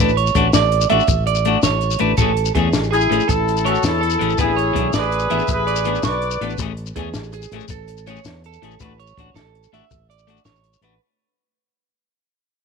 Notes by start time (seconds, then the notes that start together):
0.00 A1 D4 B4, muted clean electric guitar stroke
0.09 shekere
0.17 C#5, closed hi-hat
0.27 shekere
0.35 A1 A3 D4 F#4, kick, closed hi-hat, shekere
0.53 A1 D5, snare, closed hi-hat, shekere
0.72 closed hi-hat
0.81 shekere
0.90 A1 A3 D4 F#4 E5, closed hi-hat
1.00 shekere
1.07 A1, kick, closed hi-hat, shekere
1.27 D5, closed hi-hat
1.35 shekere
1.45 A3 D4 F#4, closed hi-hat
1.63 A1 C#5, snare, closed hi-hat, shekere
1.81 closed hi-hat, shekere
1.91 shekere
1.99 A1 A3 D4 B4, closed hi-hat
2.17 A1 E3 A3 C#4 A4, kick, closed hi-hat, shekere
2.22 G#4
2.37 closed hi-hat
2.46 shekere
2.55 E2 E3 A3 C#4 G#4, kick, closed hi-hat
2.73 A1, snare, closed hi-hat, shekere
2.84 shekere
2.91 E4 G#4, closed hi-hat, shekere
3.01 shekere
3.10 A1 E3 A3 C#4 G#4, closed hi-hat, shekere
3.20 shekere
3.28 A1 E4 A4, kick, closed hi-hat, shekere
3.48 closed hi-hat, shekere
3.57 shekere
3.65 E3 A3 C#4 F#4 G#4 A4 C#5, closed hi-hat
3.75 shekere
3.83 E2 E4 A4, snare, closed hi-hat, shekere
3.88 E4
4.01 A4, closed hi-hat
4.10 shekere
4.19 A1 E3 A3 C#4 G#4, closed hi-hat
4.30 shekere
4.38 A1 E3 B3 D4 E4 G#4 B4, kick, closed hi-hat, shekere
4.42 E4
4.56 C#5, closed hi-hat
4.73 B1 E3 B3 D4 G#4, kick, closed hi-hat
4.93 A1 G#4 D5, snare, closed hi-hat, shekere
4.98 G#4 B4
5.12 closed hi-hat, shekere
5.19 shekere
5.30 A1 E3 B3 D4 G#4 E5, closed hi-hat, shekere
5.39 shekere
5.48 A1 G#4 B4, kick, closed hi-hat, shekere
5.53 G#4
5.67 D5, closed hi-hat, shekere
5.76 shekere
5.84 E3 B3 D4 G#4, closed hi-hat, shekere
5.95 shekere
6.03 B1 B4 C#6, snare, closed hi-hat, shekere
6.07 B4 D5
6.22 closed hi-hat
6.31 shekere
6.41 A1 E3 B3 D4 B4, muted clean electric guitar stroke, closed hi-hat
6.50 shekere
6.58 A1 E3 A3 C#4, muted clean electric guitar stroke, kick, closed hi-hat, shekere
6.62 G#4
6.77 closed hi-hat
6.86 shekere
6.96 E2 E3 A3 C#4 G#4, kick, closed hi-hat
7.14 A1, snare, closed hi-hat, shekere
7.23 shekere
7.32 G#4, closed hi-hat, shekere
7.42 shekere
7.51 A1 E3 A3 C#4, closed hi-hat, shekere
7.56 G#4
7.60 shekere
7.68 A1 A4, kick, closed hi-hat, shekere
7.88 closed hi-hat, shekere
7.98 shekere
8.07 E3 A3 C#4 G#4 C#5, closed hi-hat, shekere
8.16 shekere
8.25 E2, snare, closed hi-hat, shekere
8.44 A4, closed hi-hat
8.53 shekere
8.62 A1 E3 A3 C#4 G#4, closed hi-hat
8.71 shekere
8.80 A1 A3 D4 F#4 B4, kick, closed hi-hat, shekere
9.00 C#5, closed hi-hat
9.07 shekere
9.17 A1 D4 F#4, muted clean electric guitar stroke, kick, closed hi-hat
9.34 A1 A4, snare, closed hi-hat, shekere
9.55 closed hi-hat
9.63 shekere
9.73 A1 A3 D4 F#4 E5, snare, closed hi-hat
9.91 A1, kick, closed hi-hat, shekere
10.10 D5, closed hi-hat, shekere
10.18 shekere
10.27 A3 D4 F#4, closed hi-hat, shekere
10.37 shekere
10.45 A1 C#5, snare, closed hi-hat, shekere
10.56 shekere
10.64 closed hi-hat, shekere
10.73 shekere
10.81 A1 A3 D4 F#4 B4, closed hi-hat